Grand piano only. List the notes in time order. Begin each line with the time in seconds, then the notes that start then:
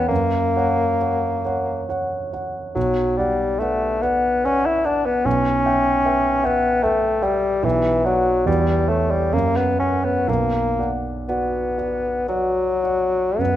Already playing: E2 C#5 G5
0.10 F#2
0.56 C#5 F#5
1.01 C#5 F#5
1.45 C#5 F#5
1.89 C#5 F#5
2.33 C#5 F#5
2.76 B1
3.19 D5 F#5
3.61 B4 D5 F#5
4.03 D5 F#5
4.44 B4 D5 F#5
4.85 D5 F#5
5.25 B1
5.66 E5 G5
6.05 B4 E5 G5
6.44 E5 G5
6.82 B4 E5 G5
7.22 E5 G5
7.63 B1
8.04 D5 F#5
8.46 E2
8.88 C#5
9.33 F#2
9.79 C#5 F#5
10.28 B1
10.79 D5 F#5
11.29 F#4 D5 F#5
11.78 D5 F#5
12.29 F#4 D5 F#5
12.84 D5 F#5
13.38 F#2